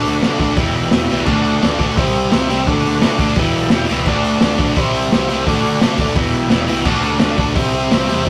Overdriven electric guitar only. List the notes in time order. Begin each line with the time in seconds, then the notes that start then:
Already playing: D3 A3 D4
0.22 D3 A3 D4
0.39 D3 A3 D4
0.57 E2 B2 E3
0.92 E2 B2 E3
1.11 E2 B2 E3
1.26 D3 A3 D4
1.62 D3 A3 D4
1.78 D3 A3 D4
1.98 C3 G3 C4
2.31 C3 G3 C4
2.49 C3 G3 C4
2.67 D3 A3 D4
3.01 D3 A3 D4
3.19 D3 A3 D4
3.37 E2 B2 E3
3.71 E2 B2 E3
3.89 E2 B2 E3
4.07 D3 A3 D4
4.43 D3 A3 D4
4.59 D3 A3 D4
4.76 C3 G3 C4
5.12 C3 G3 C4
5.28 C3 G3 C4
5.46 D3 A3 D4
5.82 D3 A3 D4
6.00 D3 A3 D4
6.15 E2 B2 E3
6.50 E2 B2 E3
6.67 E2 B2 E3
6.85 D3 A3 D4
7.19 D3 A3 D4
7.37 D3 A3 D4
7.56 C3 G3 C4
7.91 C3 G3 C4
8.09 C3 G3 C4